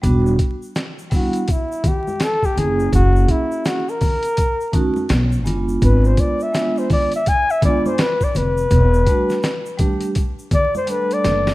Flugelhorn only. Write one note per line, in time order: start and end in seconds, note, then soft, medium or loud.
1.15 1.53 F#4 medium
1.51 1.89 E4 medium
1.88 2.25 G4 medium
2.23 2.47 A4 medium
2.46 2.60 G4 medium
2.59 2.94 G#4 medium
2.95 3.33 F#4 medium
3.31 3.68 E4 medium
3.67 3.91 F#4 medium
3.90 4.97 A#4 loud
5.84 6.09 B4 medium
6.07 6.22 C5 medium
6.20 6.44 D5 medium
6.43 6.80 E5 medium
6.79 6.91 C5 medium
6.93 7.13 D5 loud
7.16 7.30 E5 loud
7.29 7.53 G#5 loud
7.51 7.64 E5 medium
7.65 7.89 D5 medium
7.87 8.03 C5 medium
8.01 8.25 B4 loud
8.24 8.39 D5 medium
8.37 10.17 B4 loud
10.55 10.74 D5 loud
10.77 10.92 C5 medium
10.91 11.15 B4 loud
11.14 11.54 D5 loud